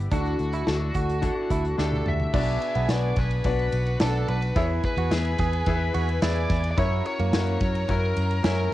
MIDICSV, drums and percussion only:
0, 0, Header, 1, 2, 480
1, 0, Start_track
1, 0, Tempo, 555042
1, 101, Time_signature, 4, 2, 24, 8
1, 7557, End_track
2, 0, Start_track
2, 0, Title_t, "Drums"
2, 97, Note_on_c, 9, 42, 81
2, 100, Note_on_c, 9, 36, 102
2, 183, Note_off_c, 9, 42, 0
2, 186, Note_off_c, 9, 36, 0
2, 217, Note_on_c, 9, 42, 29
2, 304, Note_off_c, 9, 42, 0
2, 337, Note_on_c, 9, 42, 55
2, 423, Note_off_c, 9, 42, 0
2, 456, Note_on_c, 9, 42, 52
2, 543, Note_off_c, 9, 42, 0
2, 578, Note_on_c, 9, 38, 98
2, 665, Note_off_c, 9, 38, 0
2, 815, Note_on_c, 9, 42, 68
2, 820, Note_on_c, 9, 36, 82
2, 901, Note_off_c, 9, 42, 0
2, 907, Note_off_c, 9, 36, 0
2, 944, Note_on_c, 9, 42, 51
2, 1031, Note_off_c, 9, 42, 0
2, 1057, Note_on_c, 9, 42, 82
2, 1062, Note_on_c, 9, 36, 90
2, 1143, Note_off_c, 9, 42, 0
2, 1149, Note_off_c, 9, 36, 0
2, 1300, Note_on_c, 9, 42, 75
2, 1301, Note_on_c, 9, 36, 87
2, 1386, Note_off_c, 9, 42, 0
2, 1387, Note_off_c, 9, 36, 0
2, 1424, Note_on_c, 9, 42, 44
2, 1510, Note_off_c, 9, 42, 0
2, 1539, Note_on_c, 9, 38, 56
2, 1626, Note_off_c, 9, 38, 0
2, 1661, Note_on_c, 9, 48, 57
2, 1748, Note_off_c, 9, 48, 0
2, 1781, Note_on_c, 9, 45, 75
2, 1867, Note_off_c, 9, 45, 0
2, 1900, Note_on_c, 9, 43, 84
2, 1987, Note_off_c, 9, 43, 0
2, 2020, Note_on_c, 9, 49, 101
2, 2022, Note_on_c, 9, 36, 122
2, 2106, Note_off_c, 9, 49, 0
2, 2108, Note_off_c, 9, 36, 0
2, 2262, Note_on_c, 9, 51, 52
2, 2349, Note_off_c, 9, 51, 0
2, 2380, Note_on_c, 9, 51, 47
2, 2466, Note_off_c, 9, 51, 0
2, 2499, Note_on_c, 9, 38, 102
2, 2499, Note_on_c, 9, 51, 74
2, 2585, Note_off_c, 9, 38, 0
2, 2585, Note_off_c, 9, 51, 0
2, 2736, Note_on_c, 9, 51, 62
2, 2741, Note_on_c, 9, 36, 102
2, 2822, Note_off_c, 9, 51, 0
2, 2827, Note_off_c, 9, 36, 0
2, 2860, Note_on_c, 9, 51, 45
2, 2947, Note_off_c, 9, 51, 0
2, 2975, Note_on_c, 9, 51, 73
2, 2982, Note_on_c, 9, 36, 91
2, 3061, Note_off_c, 9, 51, 0
2, 3068, Note_off_c, 9, 36, 0
2, 3104, Note_on_c, 9, 51, 33
2, 3191, Note_off_c, 9, 51, 0
2, 3219, Note_on_c, 9, 51, 72
2, 3305, Note_off_c, 9, 51, 0
2, 3341, Note_on_c, 9, 51, 39
2, 3428, Note_off_c, 9, 51, 0
2, 3456, Note_on_c, 9, 51, 93
2, 3459, Note_on_c, 9, 38, 122
2, 3542, Note_off_c, 9, 51, 0
2, 3545, Note_off_c, 9, 38, 0
2, 3701, Note_on_c, 9, 51, 62
2, 3788, Note_off_c, 9, 51, 0
2, 3822, Note_on_c, 9, 51, 47
2, 3908, Note_off_c, 9, 51, 0
2, 3940, Note_on_c, 9, 51, 69
2, 3942, Note_on_c, 9, 36, 124
2, 4027, Note_off_c, 9, 51, 0
2, 4028, Note_off_c, 9, 36, 0
2, 4180, Note_on_c, 9, 51, 49
2, 4183, Note_on_c, 9, 36, 92
2, 4266, Note_off_c, 9, 51, 0
2, 4269, Note_off_c, 9, 36, 0
2, 4300, Note_on_c, 9, 51, 48
2, 4387, Note_off_c, 9, 51, 0
2, 4421, Note_on_c, 9, 38, 107
2, 4421, Note_on_c, 9, 51, 77
2, 4507, Note_off_c, 9, 38, 0
2, 4508, Note_off_c, 9, 51, 0
2, 4539, Note_on_c, 9, 51, 40
2, 4625, Note_off_c, 9, 51, 0
2, 4654, Note_on_c, 9, 51, 57
2, 4661, Note_on_c, 9, 36, 99
2, 4740, Note_off_c, 9, 51, 0
2, 4747, Note_off_c, 9, 36, 0
2, 4781, Note_on_c, 9, 51, 46
2, 4868, Note_off_c, 9, 51, 0
2, 4895, Note_on_c, 9, 51, 69
2, 4901, Note_on_c, 9, 36, 95
2, 4982, Note_off_c, 9, 51, 0
2, 4988, Note_off_c, 9, 36, 0
2, 5139, Note_on_c, 9, 51, 72
2, 5226, Note_off_c, 9, 51, 0
2, 5264, Note_on_c, 9, 51, 43
2, 5350, Note_off_c, 9, 51, 0
2, 5379, Note_on_c, 9, 51, 87
2, 5381, Note_on_c, 9, 38, 127
2, 5465, Note_off_c, 9, 51, 0
2, 5468, Note_off_c, 9, 38, 0
2, 5497, Note_on_c, 9, 51, 37
2, 5583, Note_off_c, 9, 51, 0
2, 5617, Note_on_c, 9, 38, 33
2, 5618, Note_on_c, 9, 51, 66
2, 5621, Note_on_c, 9, 36, 111
2, 5703, Note_off_c, 9, 38, 0
2, 5704, Note_off_c, 9, 51, 0
2, 5708, Note_off_c, 9, 36, 0
2, 5739, Note_on_c, 9, 51, 53
2, 5826, Note_off_c, 9, 51, 0
2, 5861, Note_on_c, 9, 36, 113
2, 5861, Note_on_c, 9, 51, 70
2, 5947, Note_off_c, 9, 51, 0
2, 5948, Note_off_c, 9, 36, 0
2, 6100, Note_on_c, 9, 51, 49
2, 6187, Note_off_c, 9, 51, 0
2, 6221, Note_on_c, 9, 51, 49
2, 6307, Note_off_c, 9, 51, 0
2, 6340, Note_on_c, 9, 38, 117
2, 6340, Note_on_c, 9, 51, 77
2, 6426, Note_off_c, 9, 38, 0
2, 6427, Note_off_c, 9, 51, 0
2, 6458, Note_on_c, 9, 51, 41
2, 6544, Note_off_c, 9, 51, 0
2, 6576, Note_on_c, 9, 51, 63
2, 6581, Note_on_c, 9, 36, 109
2, 6662, Note_off_c, 9, 51, 0
2, 6667, Note_off_c, 9, 36, 0
2, 6702, Note_on_c, 9, 51, 48
2, 6789, Note_off_c, 9, 51, 0
2, 6818, Note_on_c, 9, 51, 70
2, 6822, Note_on_c, 9, 36, 94
2, 6905, Note_off_c, 9, 51, 0
2, 6909, Note_off_c, 9, 36, 0
2, 7060, Note_on_c, 9, 51, 68
2, 7147, Note_off_c, 9, 51, 0
2, 7183, Note_on_c, 9, 51, 41
2, 7270, Note_off_c, 9, 51, 0
2, 7298, Note_on_c, 9, 51, 80
2, 7301, Note_on_c, 9, 38, 127
2, 7385, Note_off_c, 9, 51, 0
2, 7388, Note_off_c, 9, 38, 0
2, 7417, Note_on_c, 9, 51, 34
2, 7504, Note_off_c, 9, 51, 0
2, 7557, End_track
0, 0, End_of_file